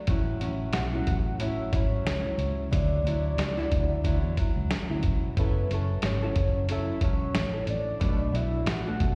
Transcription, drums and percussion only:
0.07 kick, closed hi-hat
0.41 closed hi-hat
0.73 snare, closed hi-hat
1.07 kick, closed hi-hat
1.40 closed hi-hat
1.73 kick, closed hi-hat
2.07 snare, closed hi-hat
2.39 closed hi-hat
2.73 kick, closed hi-hat
3.07 closed hi-hat
3.38 snare, closed hi-hat
3.59 snare
3.72 kick, closed hi-hat
4.04 kick, closed hi-hat
4.37 kick, closed hi-hat
4.71 snare, closed hi-hat
5.03 kick, closed hi-hat
5.37 kick, closed hi-hat
5.71 closed hi-hat
6.02 snare, closed hi-hat
6.36 kick, closed hi-hat
6.69 closed hi-hat
7.01 kick, closed hi-hat
7.35 snare, closed hi-hat
7.67 closed hi-hat
8.01 kick, closed hi-hat
8.35 closed hi-hat
8.66 snare, closed hi-hat
9.00 kick, closed hi-hat

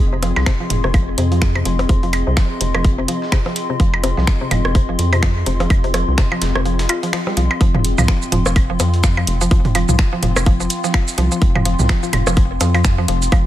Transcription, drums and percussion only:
0.23 closed hi-hat, percussion blips
0.36 snare, percussion blips
0.46 finger snap, kick, snare, closed hi-hat
0.70 closed hi-hat, mid tom
0.84 cross-stick
0.94 kick, closed hi-hat, percussion blips
1.18 closed hi-hat
1.32 closed hi-hat
1.42 finger snap, kick, snare, closed hi-hat
1.55 percussion blips
1.65 closed hi-hat
1.79 closed hi-hat, percussion blips
1.89 kick, closed hi-hat
2.03 closed hi-hat
2.13 closed hi-hat, percussion blips
2.37 finger snap, kick, snare, closed hi-hat
2.61 closed hi-hat
2.75 cross-stick, percussion blips
2.85 kick, closed hi-hat
3.08 closed hi-hat
3.22 snare
3.32 finger snap, kick, snare, closed hi-hat, percussion blips
3.46 snare, percussion blips
3.56 closed hi-hat
3.80 kick, closed hi-hat
3.94 percussion blips
4.04 closed hi-hat, percussion blips
4.17 snare
4.27 finger snap, kick, snare, closed hi-hat
4.51 closed hi-hat, mid tom, percussion blips
4.65 cross-stick
4.75 kick, closed hi-hat
4.99 closed hi-hat
5.13 closed hi-hat, percussion blips
5.23 finger snap, kick, snare, closed hi-hat
5.46 closed hi-hat
5.60 closed hi-hat, percussion blips
5.70 kick, closed hi-hat, percussion blips
5.84 closed hi-hat
5.94 cross-stick, closed hi-hat, percussion blips
6.18 finger snap, kick, snare, closed hi-hat
6.32 percussion blips
6.42 snare, closed hi-hat
6.55 cross-stick
6.66 closed hi-hat
6.79 snare, closed hi-hat
6.89 closed hi-hat, percussion blips
7.03 closed hi-hat
7.13 finger snap, snare, closed hi-hat
7.27 snare, percussion blips
7.37 closed hi-hat
7.51 percussion blips
7.61 kick, closed hi-hat
7.75 mid tom
7.85 closed hi-hat
7.98 snare, mid tom, percussion blips, shaker
8.08 finger snap, kick, snare, closed hi-hat
8.22 shaker
8.32 closed hi-hat, mid tom
8.46 cross-stick, percussion blips, shaker
8.56 kick, closed hi-hat, percussion blips
8.80 closed hi-hat, percussion blips, shaker
8.94 closed hi-hat
9.04 finger snap, kick, snare, closed hi-hat, shaker
9.17 percussion blips
9.27 closed hi-hat
9.41 closed hi-hat, shaker
9.51 kick, closed hi-hat
9.65 closed hi-hat, mid tom
9.75 closed hi-hat, percussion blips
9.89 mid tom, shaker
9.99 finger snap, kick, snare, closed hi-hat
10.23 closed hi-hat, mid tom
10.36 cross-stick, percussion blips, shaker
10.46 kick, closed hi-hat
10.60 shaker
10.70 closed hi-hat, shaker
10.84 snare, shaker
10.94 finger snap, kick, snare, closed hi-hat, percussion blips
11.08 snare, shaker
11.18 closed hi-hat
11.32 shaker
11.42 kick, closed hi-hat
11.55 mid tom, percussion blips
11.65 closed hi-hat
11.79 snare, mid tom, shaker
11.89 finger snap, kick, snare, closed hi-hat
12.03 shaker
12.13 closed hi-hat, mid tom, percussion blips
12.27 cross-stick, percussion blips, shaker
12.37 kick, closed hi-hat
12.61 closed hi-hat, percussion blips, shaker
12.74 closed hi-hat, percussion blips
12.84 finger snap, kick, snare, closed hi-hat, shaker
13.08 closed hi-hat
13.22 closed hi-hat, shaker
13.32 kick, closed hi-hat, percussion blips

